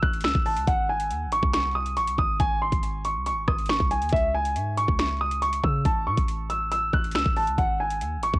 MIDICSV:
0, 0, Header, 1, 4, 480
1, 0, Start_track
1, 0, Tempo, 431655
1, 747, Time_signature, 4, 2, 24, 8
1, 9332, End_track
2, 0, Start_track
2, 0, Title_t, "Grand piano"
2, 0, Program_c, 0, 0
2, 26, Note_on_c, 0, 90, 78
2, 242, Note_off_c, 0, 90, 0
2, 266, Note_on_c, 0, 88, 86
2, 482, Note_off_c, 0, 88, 0
2, 508, Note_on_c, 0, 81, 88
2, 723, Note_off_c, 0, 81, 0
2, 748, Note_on_c, 0, 78, 97
2, 963, Note_off_c, 0, 78, 0
2, 991, Note_on_c, 0, 80, 83
2, 1441, Note_off_c, 0, 80, 0
2, 1471, Note_on_c, 0, 85, 94
2, 1684, Note_off_c, 0, 85, 0
2, 1707, Note_on_c, 0, 85, 88
2, 1922, Note_off_c, 0, 85, 0
2, 1947, Note_on_c, 0, 87, 86
2, 2162, Note_off_c, 0, 87, 0
2, 2188, Note_on_c, 0, 85, 90
2, 2403, Note_off_c, 0, 85, 0
2, 2432, Note_on_c, 0, 87, 86
2, 2644, Note_off_c, 0, 87, 0
2, 2667, Note_on_c, 0, 80, 101
2, 2882, Note_off_c, 0, 80, 0
2, 2911, Note_on_c, 0, 84, 87
2, 3361, Note_off_c, 0, 84, 0
2, 3390, Note_on_c, 0, 85, 80
2, 3604, Note_off_c, 0, 85, 0
2, 3629, Note_on_c, 0, 85, 85
2, 3843, Note_off_c, 0, 85, 0
2, 3869, Note_on_c, 0, 87, 78
2, 4083, Note_off_c, 0, 87, 0
2, 4108, Note_on_c, 0, 85, 84
2, 4322, Note_off_c, 0, 85, 0
2, 4348, Note_on_c, 0, 80, 85
2, 4563, Note_off_c, 0, 80, 0
2, 4587, Note_on_c, 0, 76, 105
2, 4802, Note_off_c, 0, 76, 0
2, 4831, Note_on_c, 0, 80, 88
2, 5281, Note_off_c, 0, 80, 0
2, 5310, Note_on_c, 0, 85, 92
2, 5524, Note_off_c, 0, 85, 0
2, 5554, Note_on_c, 0, 85, 86
2, 5766, Note_off_c, 0, 85, 0
2, 5795, Note_on_c, 0, 87, 89
2, 6006, Note_off_c, 0, 87, 0
2, 6029, Note_on_c, 0, 85, 94
2, 6243, Note_off_c, 0, 85, 0
2, 6273, Note_on_c, 0, 88, 84
2, 6485, Note_off_c, 0, 88, 0
2, 6511, Note_on_c, 0, 81, 94
2, 6724, Note_off_c, 0, 81, 0
2, 6751, Note_on_c, 0, 85, 88
2, 7201, Note_off_c, 0, 85, 0
2, 7227, Note_on_c, 0, 88, 83
2, 7442, Note_off_c, 0, 88, 0
2, 7468, Note_on_c, 0, 88, 91
2, 7683, Note_off_c, 0, 88, 0
2, 7711, Note_on_c, 0, 90, 79
2, 7924, Note_off_c, 0, 90, 0
2, 7951, Note_on_c, 0, 88, 90
2, 8164, Note_off_c, 0, 88, 0
2, 8191, Note_on_c, 0, 81, 87
2, 8404, Note_off_c, 0, 81, 0
2, 8430, Note_on_c, 0, 78, 93
2, 8644, Note_off_c, 0, 78, 0
2, 8672, Note_on_c, 0, 80, 78
2, 9121, Note_off_c, 0, 80, 0
2, 9153, Note_on_c, 0, 85, 88
2, 9332, Note_off_c, 0, 85, 0
2, 9332, End_track
3, 0, Start_track
3, 0, Title_t, "808-style bass"
3, 0, Program_c, 1, 38
3, 27, Note_on_c, 1, 33, 114
3, 266, Note_on_c, 1, 37, 97
3, 283, Note_off_c, 1, 33, 0
3, 381, Note_off_c, 1, 37, 0
3, 388, Note_on_c, 1, 33, 111
3, 626, Note_on_c, 1, 37, 98
3, 643, Note_off_c, 1, 33, 0
3, 741, Note_off_c, 1, 37, 0
3, 748, Note_on_c, 1, 32, 109
3, 1227, Note_on_c, 1, 39, 101
3, 1244, Note_off_c, 1, 32, 0
3, 1407, Note_on_c, 1, 32, 103
3, 1423, Note_off_c, 1, 39, 0
3, 1578, Note_off_c, 1, 32, 0
3, 1589, Note_on_c, 1, 36, 108
3, 2188, Note_on_c, 1, 33, 102
3, 2204, Note_off_c, 1, 36, 0
3, 2309, Note_on_c, 1, 36, 105
3, 2325, Note_off_c, 1, 33, 0
3, 2422, Note_off_c, 1, 36, 0
3, 2427, Note_on_c, 1, 32, 104
3, 2658, Note_off_c, 1, 32, 0
3, 2668, Note_on_c, 1, 32, 115
3, 3013, Note_off_c, 1, 32, 0
3, 3027, Note_on_c, 1, 32, 110
3, 3508, Note_on_c, 1, 36, 101
3, 3525, Note_off_c, 1, 32, 0
3, 3688, Note_on_c, 1, 32, 102
3, 3704, Note_off_c, 1, 36, 0
3, 3859, Note_off_c, 1, 32, 0
3, 3868, Note_on_c, 1, 32, 107
3, 4213, Note_off_c, 1, 32, 0
3, 4228, Note_on_c, 1, 36, 113
3, 4467, Note_on_c, 1, 39, 99
3, 4484, Note_off_c, 1, 36, 0
3, 4582, Note_off_c, 1, 39, 0
3, 4588, Note_on_c, 1, 37, 107
3, 5067, Note_on_c, 1, 44, 105
3, 5084, Note_off_c, 1, 37, 0
3, 5409, Note_off_c, 1, 44, 0
3, 5429, Note_on_c, 1, 37, 99
3, 6235, Note_off_c, 1, 37, 0
3, 6268, Note_on_c, 1, 49, 107
3, 6498, Note_off_c, 1, 49, 0
3, 6508, Note_on_c, 1, 33, 108
3, 6748, Note_on_c, 1, 45, 99
3, 6765, Note_off_c, 1, 33, 0
3, 6862, Note_off_c, 1, 45, 0
3, 6867, Note_on_c, 1, 33, 103
3, 7674, Note_off_c, 1, 33, 0
3, 7708, Note_on_c, 1, 33, 112
3, 7946, Note_on_c, 1, 37, 99
3, 7963, Note_off_c, 1, 33, 0
3, 8061, Note_off_c, 1, 37, 0
3, 8068, Note_on_c, 1, 33, 109
3, 8308, Note_on_c, 1, 37, 98
3, 8325, Note_off_c, 1, 33, 0
3, 8422, Note_off_c, 1, 37, 0
3, 8428, Note_on_c, 1, 32, 110
3, 8908, Note_on_c, 1, 39, 105
3, 8925, Note_off_c, 1, 32, 0
3, 9087, Note_on_c, 1, 32, 99
3, 9104, Note_off_c, 1, 39, 0
3, 9259, Note_off_c, 1, 32, 0
3, 9270, Note_on_c, 1, 36, 107
3, 9332, Note_off_c, 1, 36, 0
3, 9332, End_track
4, 0, Start_track
4, 0, Title_t, "Drums"
4, 27, Note_on_c, 9, 36, 95
4, 139, Note_off_c, 9, 36, 0
4, 148, Note_on_c, 9, 42, 50
4, 228, Note_off_c, 9, 42, 0
4, 228, Note_on_c, 9, 42, 67
4, 267, Note_on_c, 9, 38, 113
4, 274, Note_on_c, 9, 26, 90
4, 308, Note_off_c, 9, 42, 0
4, 308, Note_on_c, 9, 42, 86
4, 379, Note_off_c, 9, 38, 0
4, 385, Note_off_c, 9, 26, 0
4, 387, Note_on_c, 9, 36, 105
4, 419, Note_off_c, 9, 42, 0
4, 499, Note_off_c, 9, 36, 0
4, 508, Note_on_c, 9, 46, 61
4, 619, Note_off_c, 9, 46, 0
4, 627, Note_on_c, 9, 42, 76
4, 739, Note_off_c, 9, 42, 0
4, 747, Note_on_c, 9, 36, 127
4, 747, Note_on_c, 9, 42, 88
4, 858, Note_off_c, 9, 42, 0
4, 859, Note_off_c, 9, 36, 0
4, 1108, Note_on_c, 9, 42, 80
4, 1219, Note_off_c, 9, 42, 0
4, 1229, Note_on_c, 9, 42, 79
4, 1340, Note_off_c, 9, 42, 0
4, 1467, Note_on_c, 9, 42, 81
4, 1579, Note_off_c, 9, 42, 0
4, 1588, Note_on_c, 9, 36, 106
4, 1699, Note_off_c, 9, 36, 0
4, 1707, Note_on_c, 9, 42, 84
4, 1708, Note_on_c, 9, 38, 120
4, 1714, Note_on_c, 9, 26, 93
4, 1819, Note_off_c, 9, 38, 0
4, 1819, Note_off_c, 9, 42, 0
4, 1825, Note_off_c, 9, 26, 0
4, 2068, Note_on_c, 9, 42, 69
4, 2179, Note_off_c, 9, 42, 0
4, 2188, Note_on_c, 9, 42, 70
4, 2300, Note_off_c, 9, 42, 0
4, 2308, Note_on_c, 9, 42, 91
4, 2419, Note_off_c, 9, 42, 0
4, 2427, Note_on_c, 9, 36, 99
4, 2538, Note_off_c, 9, 36, 0
4, 2667, Note_on_c, 9, 42, 89
4, 2668, Note_on_c, 9, 36, 127
4, 2779, Note_off_c, 9, 36, 0
4, 2779, Note_off_c, 9, 42, 0
4, 3027, Note_on_c, 9, 36, 96
4, 3028, Note_on_c, 9, 42, 78
4, 3138, Note_off_c, 9, 36, 0
4, 3139, Note_off_c, 9, 42, 0
4, 3147, Note_on_c, 9, 42, 82
4, 3258, Note_off_c, 9, 42, 0
4, 3388, Note_on_c, 9, 42, 82
4, 3499, Note_off_c, 9, 42, 0
4, 3627, Note_on_c, 9, 42, 84
4, 3738, Note_off_c, 9, 42, 0
4, 3867, Note_on_c, 9, 37, 98
4, 3868, Note_on_c, 9, 36, 97
4, 3979, Note_off_c, 9, 36, 0
4, 3979, Note_off_c, 9, 37, 0
4, 3987, Note_on_c, 9, 42, 49
4, 4068, Note_off_c, 9, 42, 0
4, 4068, Note_on_c, 9, 42, 65
4, 4108, Note_on_c, 9, 38, 111
4, 4115, Note_on_c, 9, 26, 90
4, 4148, Note_off_c, 9, 42, 0
4, 4148, Note_on_c, 9, 42, 87
4, 4219, Note_off_c, 9, 38, 0
4, 4226, Note_off_c, 9, 26, 0
4, 4228, Note_on_c, 9, 36, 107
4, 4259, Note_off_c, 9, 42, 0
4, 4339, Note_off_c, 9, 36, 0
4, 4348, Note_on_c, 9, 42, 84
4, 4459, Note_off_c, 9, 42, 0
4, 4468, Note_on_c, 9, 42, 66
4, 4549, Note_off_c, 9, 42, 0
4, 4549, Note_on_c, 9, 42, 64
4, 4588, Note_on_c, 9, 36, 127
4, 4629, Note_off_c, 9, 42, 0
4, 4629, Note_on_c, 9, 42, 64
4, 4699, Note_off_c, 9, 36, 0
4, 4740, Note_off_c, 9, 42, 0
4, 4949, Note_on_c, 9, 42, 81
4, 5060, Note_off_c, 9, 42, 0
4, 5069, Note_on_c, 9, 42, 83
4, 5180, Note_off_c, 9, 42, 0
4, 5309, Note_on_c, 9, 42, 82
4, 5420, Note_off_c, 9, 42, 0
4, 5429, Note_on_c, 9, 36, 104
4, 5540, Note_off_c, 9, 36, 0
4, 5549, Note_on_c, 9, 38, 121
4, 5549, Note_on_c, 9, 42, 82
4, 5555, Note_on_c, 9, 26, 97
4, 5660, Note_off_c, 9, 38, 0
4, 5660, Note_off_c, 9, 42, 0
4, 5667, Note_off_c, 9, 26, 0
4, 5909, Note_on_c, 9, 42, 69
4, 6020, Note_off_c, 9, 42, 0
4, 6029, Note_on_c, 9, 42, 69
4, 6140, Note_off_c, 9, 42, 0
4, 6149, Note_on_c, 9, 42, 89
4, 6260, Note_off_c, 9, 42, 0
4, 6268, Note_on_c, 9, 36, 99
4, 6379, Note_off_c, 9, 36, 0
4, 6508, Note_on_c, 9, 36, 127
4, 6508, Note_on_c, 9, 42, 88
4, 6619, Note_off_c, 9, 36, 0
4, 6619, Note_off_c, 9, 42, 0
4, 6867, Note_on_c, 9, 36, 96
4, 6868, Note_on_c, 9, 42, 80
4, 6979, Note_off_c, 9, 36, 0
4, 6979, Note_off_c, 9, 42, 0
4, 6988, Note_on_c, 9, 42, 80
4, 7100, Note_off_c, 9, 42, 0
4, 7228, Note_on_c, 9, 42, 81
4, 7339, Note_off_c, 9, 42, 0
4, 7468, Note_on_c, 9, 42, 85
4, 7580, Note_off_c, 9, 42, 0
4, 7708, Note_on_c, 9, 36, 92
4, 7819, Note_off_c, 9, 36, 0
4, 7829, Note_on_c, 9, 42, 50
4, 7909, Note_off_c, 9, 42, 0
4, 7909, Note_on_c, 9, 42, 65
4, 7949, Note_on_c, 9, 38, 112
4, 7956, Note_on_c, 9, 26, 92
4, 7988, Note_off_c, 9, 42, 0
4, 7988, Note_on_c, 9, 42, 88
4, 8060, Note_off_c, 9, 38, 0
4, 8067, Note_off_c, 9, 26, 0
4, 8068, Note_on_c, 9, 36, 107
4, 8099, Note_off_c, 9, 42, 0
4, 8179, Note_off_c, 9, 36, 0
4, 8188, Note_on_c, 9, 46, 60
4, 8299, Note_off_c, 9, 46, 0
4, 8308, Note_on_c, 9, 42, 77
4, 8420, Note_off_c, 9, 42, 0
4, 8428, Note_on_c, 9, 36, 127
4, 8429, Note_on_c, 9, 42, 88
4, 8539, Note_off_c, 9, 36, 0
4, 8540, Note_off_c, 9, 42, 0
4, 8788, Note_on_c, 9, 42, 80
4, 8899, Note_off_c, 9, 42, 0
4, 8908, Note_on_c, 9, 42, 82
4, 9019, Note_off_c, 9, 42, 0
4, 9149, Note_on_c, 9, 42, 81
4, 9260, Note_off_c, 9, 42, 0
4, 9269, Note_on_c, 9, 36, 102
4, 9332, Note_off_c, 9, 36, 0
4, 9332, End_track
0, 0, End_of_file